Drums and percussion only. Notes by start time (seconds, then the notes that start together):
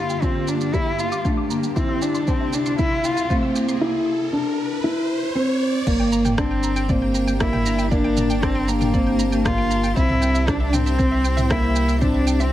0.10 shaker
0.22 kick, shaker
0.48 shaker
0.61 shaker
0.74 kick, shaker
0.99 shaker
1.12 shaker
1.25 kick, shaker
1.51 shaker
1.63 shaker
1.76 kick, shaker
2.02 shaker
2.15 shaker
2.27 kick, shaker
2.53 shaker
2.66 shaker
2.79 kick, shaker
3.04 shaker
3.17 shaker
3.30 kick, shaker
3.56 shaker
3.69 shaker
5.87 kick, crash, shaker
6.12 shaker
6.25 mid tom, shaker
6.38 kick, cross-stick, shaker
6.64 shaker
6.76 shaker
6.89 kick, mid tom, shaker
7.15 shaker
7.28 shaker
7.40 kick, cross-stick, shaker
7.53 mid tom
7.66 shaker
7.79 shaker
7.92 kick, shaker
8.17 mid tom, shaker
8.30 shaker
8.43 kick, cross-stick, shaker
8.69 shaker
8.81 mid tom, shaker
8.94 kick, shaker
9.20 shaker
9.33 shaker
9.45 kick, cross-stick, mid tom, shaker
9.71 shaker
9.84 shaker
9.97 kick, shaker
10.10 mid tom
10.22 shaker
10.35 shaker
10.48 kick, cross-stick, shaker
10.74 mid tom, shaker
10.87 shaker
10.99 kick, shaker
11.25 shaker
11.38 mid tom, shaker
11.51 kick, cross-stick, shaker
11.76 shaker
11.89 shaker
12.02 kick, mid tom, shaker
12.27 shaker
12.40 shaker